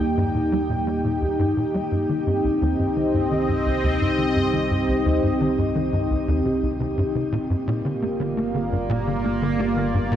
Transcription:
Already playing: synth drone D#2, analog synth pad A#3 D#4 G4 D5 G5
0.17 analog synth bass G2
0.35 analog synth bass A#2
0.52 analog synth bass G3
0.69 analog synth bass A#2
0.87 analog synth bass G3
1.04 analog synth bass A#2
1.22 analog synth bass D#2
1.39 analog synth bass G2
1.57 analog synth bass A#2
1.74 analog synth bass G3
1.92 synth drone C2, analog synth bass G2, analog synth pad C4
2.09 analog synth bass D#3
2.27 analog synth bass G2
2.38 analog synth pad D#5
2.44 analog synth bass C2
2.62 analog synth bass D#2
2.79 analog synth bass G2
2.96 analog synth bass D#3
3.14 analog synth bass G2
3.31 analog synth bass D#3
3.49 analog synth bass G2
3.66 analog synth bass C2
3.83 analog synth bass D#2
4.01 analog synth bass G2
4.18 analog synth bass D#3
4.36 analog synth bass G2
4.53 analog synth bass D#3
4.71 analog synth bass G2
4.88 analog synth bass C2
5.06 analog synth bass D#2
5.23 analog synth bass G2
5.41 analog synth bass D#3
5.58 analog synth bass G2
5.75 analog synth bass D#3
5.93 analog synth bass G2
6.10 analog synth bass C2
6.28 analog synth bass D#2
6.45 analog synth bass C3
6.63 analog synth bass C2
6.80 analog synth bass C3
6.98 analog synth bass G2
7.15 analog synth bass C3
7.32 analog synth bass A#2
7.50 synth drone G1, analog synth bass G2, analog synth pad A#3
7.67 analog synth bass A#2
7.84 analog synth bass D3, analog synth pad F4
8.02 analog synth bass A#3
8.11 analog synth pad D5
8.20 analog synth bass D3
8.37 analog synth bass A#3
8.54 analog synth bass D3
8.72 analog synth bass G2
8.87 analog synth bass A#2, analog synth pad F5
9.07 analog synth bass D3
9.24 analog synth bass A#3
9.42 analog synth bass D3
9.59 analog synth bass A#3
9.77 analog synth bass D3
9.94 analog synth bass G2
10.12 analog synth bass A#2

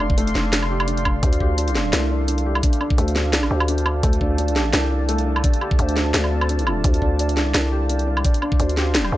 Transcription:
Already playing: 808-style bass F1, felt piano A3 G4, ambient pad D4 D5 F5 C6
0.00 felt piano D4, low woodblock
0.10 kick
0.18 felt piano A3, closed hi-hat
0.27 closed hi-hat
0.35 808-style bass F1, felt piano D4, snare
0.53 felt piano D4, snare, closed hi-hat
0.63 low woodblock
0.70 felt piano G4
0.80 low woodblock
0.88 felt piano D4, closed hi-hat
0.97 closed hi-hat
1.05 felt piano D4, kick, low woodblock
1.23 808-style bass D2, felt piano D4, kick, closed hi-hat
1.33 closed hi-hat
1.40 felt piano G4, kick
1.58 felt piano D4, closed hi-hat
1.68 closed hi-hat
1.75 felt piano D4, snare
1.93 808-style bass C2, felt piano A3, snare, closed hi-hat
2.09 felt piano D4, ambient pad A5
2.28 felt piano D4, closed hi-hat
2.38 closed hi-hat
2.46 felt piano G4
2.55 low woodblock
2.63 felt piano D4, kick, closed hi-hat
2.73 closed hi-hat
2.81 felt piano D4, low woodblock
2.90 kick
2.98 808-style bass D2, felt piano A3, closed hi-hat
3.08 closed hi-hat
3.16 felt piano D4, snare
3.33 felt piano D4, snare, closed hi-hat
3.43 low woodblock
3.51 808-style bass D2, felt piano G4
3.60 low woodblock
3.68 felt piano D4, closed hi-hat
3.78 closed hi-hat
3.86 felt piano D4, low woodblock
4.03 808-style bass D2, felt piano A3, kick, closed hi-hat
4.13 closed hi-hat
4.21 felt piano D4, kick
4.38 felt piano D4, closed hi-hat
4.48 closed hi-hat
4.56 felt piano G4, snare
4.73 808-style bass C2, felt piano D4, snare, closed hi-hat
4.91 felt piano D4
5.09 felt piano A3, closed hi-hat
5.18 closed hi-hat
5.26 felt piano D4
5.36 low woodblock
5.44 felt piano D4, kick, closed hi-hat
5.54 closed hi-hat
5.61 felt piano G4, low woodblock
5.71 kick
5.79 808-style bass D2, felt piano D4, closed hi-hat
5.89 closed hi-hat
5.97 felt piano D4, snare
6.14 808-style bass D2, felt piano A3, snare, closed hi-hat
6.24 low woodblock
6.32 felt piano C4
6.41 low woodblock
6.49 felt piano D4, closed hi-hat
6.59 closed hi-hat
6.67 felt piano F4, low woodblock
6.84 808-style bass D2, felt piano D4, kick, closed hi-hat
6.94 closed hi-hat
7.02 felt piano D4, kick
7.19 felt piano D5, closed hi-hat
7.29 closed hi-hat
7.33 808-style bass C#2, felt piano D4, snare
7.54 808-style bass C2, felt piano D4, snare, closed hi-hat
7.70 felt piano G4, ambient pad C6
7.89 felt piano D4, closed hi-hat
7.99 closed hi-hat
8.07 felt piano D4
8.17 low woodblock
8.25 felt piano D5, kick, closed hi-hat
8.34 closed hi-hat
8.42 felt piano D4, low woodblock
8.52 kick
8.60 808-style bass D2, felt piano D4, closed hi-hat
8.69 closed hi-hat
8.77 felt piano G4, snare
8.95 felt piano D4, snare, closed hi-hat
9.04 low woodblock
9.12 808-style bass D2, felt piano D4

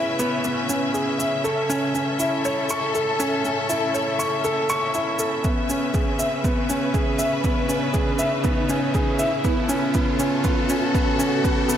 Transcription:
Already playing: string section C#3 C#4 B4 E5, grand piano B3 C#4 E4 G#4 E5, riser
0.19 grand piano B3, shaker
0.44 grand piano B3, shaker
0.69 grand piano C#4, shaker
0.94 grand piano G#4, shaker
1.19 grand piano E5, shaker
1.44 grand piano A4, shaker
1.70 grand piano C#4, shaker
1.94 grand piano C#4, shaker
2.03 string section A4
2.19 grand piano E4, shaker
2.45 grand piano C#5, shaker
2.69 grand piano C#6, shaker
2.95 grand piano A4, shaker
3.20 grand piano C#4, shaker
3.45 grand piano C#4, shaker
3.69 grand piano E4, shaker
3.94 grand piano C#5, shaker
4.19 grand piano C#6, shaker
4.44 grand piano A4, shaker
4.69 grand piano C#6, shaker
4.94 grand piano E4, shaker
5.19 grand piano A4, shaker
5.44 string section C#3, grand piano B3, kick, shaker
5.64 string section B4
5.69 grand piano C#4, shaker
5.94 grand piano G#4, kick, shaker
6.19 grand piano E5, shaker
6.44 grand piano B3, kick, shaker
6.69 grand piano C#4, shaker
6.94 grand piano G#4, kick, shaker
7.18 grand piano E5, shaker
7.44 grand piano B3, kick, shaker
7.68 grand piano C#4, shaker
7.93 grand piano G#4, kick, shaker
8.19 grand piano E5, shaker
8.44 grand piano B3, kick, shaker
8.69 grand piano C#4, shaker
8.94 grand piano G#4, kick, shaker
9.19 grand piano E5, shaker
9.44 grand piano B3, kick, shaker
9.60 string section A4
9.69 grand piano C#4, shaker
9.94 grand piano B3, kick, shaker
10.19 grand piano C#4, shaker
10.44 grand piano B3, kick, shaker
10.69 grand piano C#4, shaker
10.94 grand piano B3, kick, shaker
11.19 grand piano C#4, shaker
11.44 grand piano B3, kick, shaker
11.69 grand piano B3, shaker

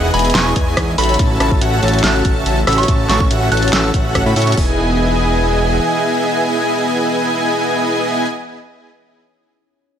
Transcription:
Already playing: analog synth bass E1, analog synth pad G#3, supersaw synth B3 E4 G#4 D#5 F#5, harp C#4 E4 G#4, digital synth lead F#5
0.03 harp B4
0.14 analog synth bass E1, supersaw synth B3 E4 G#4 D#5 G#5, harp D#5, digital synth lead G#5, synth bell B5, closed hi-hat
0.19 closed hi-hat
0.24 harp D#5, closed hi-hat
0.30 closed hi-hat
0.35 analog synth bass E1, supersaw synth B3 E4 G#4 D#5 G#5, digital synth lead G#5, synth bell C#6, snare, closed hi-hat
0.46 harp E4
0.56 analog synth bass E2, supersaw synth B3 E4 G#4 D#5 G#5, harp E4, digital synth lead G#5, kick, closed hi-hat
0.67 harp D#5
0.77 analog synth bass E2, supersaw synth B3 E4 G#4 D#5 G#5, harp D#4, digital synth lead G#5, kick, cross-stick, closed hi-hat
0.88 harp D#5
0.98 analog synth bass A1, analog synth pad C#3 A3 F#4, supersaw synth C#4 F#4 A4 E5 B5, harp C#5, digital synth lead B5, synth bell B5, open hi-hat
1.04 closed hi-hat
1.09 harp C#5, closed hi-hat
1.14 closed hi-hat
1.19 analog synth bass A1, harp C#4, supersaw synth C#4 F#4 A4 E5 A5, digital synth lead A5, kick, closed hi-hat
1.30 harp A4
1.40 analog synth bass A1, supersaw synth C#4 F#4 A4 E5 A5, harp E4, digital synth lead A5, cross-stick, closed hi-hat
1.51 harp E4, kick
1.61 analog synth bass A1, supersaw synth C#4 F#4 A4 E5 F#5, harp F#4, digital synth lead F#5, closed hi-hat
1.72 harp A4
1.83 analog synth bass A1, supersaw synth C#4 F#4 A4 E5 A5, harp C#5, digital synth lead A5, closed hi-hat
1.88 closed hi-hat
1.93 harp C#5, closed hi-hat
1.99 closed hi-hat
2.04 analog synth bass A1, supersaw synth C#4 F#4 A4 E5 A5, digital synth lead A5, synth bell F#6, snare, closed hi-hat
2.15 harp E4
2.25 analog synth bass A1, supersaw synth C#4 F#4 A4 E5 A5, harp E4, digital synth lead A5, kick, closed hi-hat
2.36 harp C#5
2.46 analog synth bass A1, harp C#4, supersaw synth C#4 F#4 A4 E5 A5, digital synth lead A5, closed hi-hat
2.57 harp C#5
2.67 analog synth bass A1, supersaw synth C#4 F#4 A4 E5 B5, harp C#5, digital synth lead B5, synth bell E6, cross-stick, open hi-hat
2.73 closed hi-hat
2.78 harp C#5, synth bell C#6, closed hi-hat
2.83 closed hi-hat
2.88 analog synth bass A1, supersaw synth C#4 F#4 A4 E5 A5, harp C#4, digital synth lead A5, kick, closed hi-hat
2.99 harp A4
3.09 analog synth bass A1, supersaw synth C#4 F#4 A4 E5 A5, harp E4, digital synth lead A5, synth bell C#6, snare, closed hi-hat
3.20 harp E4, synth bell C#6, kick
3.31 analog synth bass A1, supersaw synth C#4 F#4 A4 E5 F#5, harp F#4, digital synth lead F#5, closed hi-hat
3.41 harp A4
3.52 analog synth bass A1, supersaw synth C#4 F#4 A4 E5 A5, harp C#5, digital synth lead A5, synth bell F#6, closed hi-hat
3.57 closed hi-hat
3.62 harp C#5, closed hi-hat
3.68 closed hi-hat
3.73 analog synth bass A1, supersaw synth C#4 F#4 A4 E5 A5, digital synth lead A5, synth bell E6, snare, closed hi-hat
3.84 harp E4, synth bell E6
3.94 analog synth bass A1, supersaw synth C#4 F#4 A4 E5 F#5, harp C#5, digital synth lead F#5, kick, closed hi-hat
4.05 harp E4
4.15 harp C#4, kick, cross-stick, closed hi-hat
4.26 analog synth bass A2, harp C#4, supersaw synth C#4 F#4 A4 E5 B5, digital synth lead B5
4.36 analog synth bass A2, supersaw synth C#4 F#4 A4 E5 C#6, harp E4, digital synth lead C#6, open hi-hat
4.42 closed hi-hat
4.47 harp C#4, closed hi-hat
4.52 closed hi-hat
4.57 analog synth bass E1, analog synth pad E3 G#4 D#5, supersaw synth B3 E4 G#4 D#5 G#5, harp D#4, digital synth lead G#5, kick, open hi-hat

